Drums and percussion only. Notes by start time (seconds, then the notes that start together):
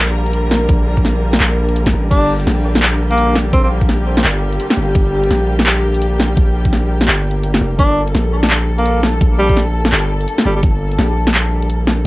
0.26 closed hi-hat
0.33 closed hi-hat
0.51 snare
0.69 kick, closed hi-hat
0.97 kick, closed hi-hat
1.05 snare, closed hi-hat
1.33 snare
1.40 clap, closed hi-hat
1.69 closed hi-hat
1.76 closed hi-hat
1.86 kick, snare, closed hi-hat
2.11 kick, closed hi-hat, crash
2.40 closed hi-hat
2.47 snare, closed hi-hat
2.75 snare
2.82 clap, closed hi-hat
3.11 closed hi-hat
3.18 closed hi-hat
3.35 snare
3.53 kick, closed hi-hat
3.81 kick, closed hi-hat
3.89 snare, closed hi-hat
4.17 snare
4.24 clap, closed hi-hat
4.52 closed hi-hat
4.60 closed hi-hat
4.70 snare
4.95 kick, closed hi-hat
5.23 closed hi-hat
5.31 snare, closed hi-hat
5.59 snare
5.66 clap, closed hi-hat
5.94 closed hi-hat
6.02 closed hi-hat
6.20 snare
6.37 kick, closed hi-hat
6.65 kick, closed hi-hat
6.73 snare, closed hi-hat
7.01 snare
7.08 clap
7.31 closed hi-hat
7.44 closed hi-hat
7.54 snare
7.79 kick, closed hi-hat
8.08 closed hi-hat
8.15 snare, closed hi-hat
8.43 snare
8.50 clap, closed hi-hat
8.78 closed hi-hat
8.86 closed hi-hat
9.03 snare
9.21 kick, closed hi-hat
9.49 kick, closed hi-hat
9.57 snare, closed hi-hat
9.85 snare
9.92 clap, closed hi-hat
10.21 closed hi-hat
10.28 closed hi-hat
10.38 snare
10.63 kick, closed hi-hat
10.91 closed hi-hat
10.99 snare, closed hi-hat
11.27 snare
11.34 clap, closed hi-hat
11.62 closed hi-hat
11.70 closed hi-hat
11.87 snare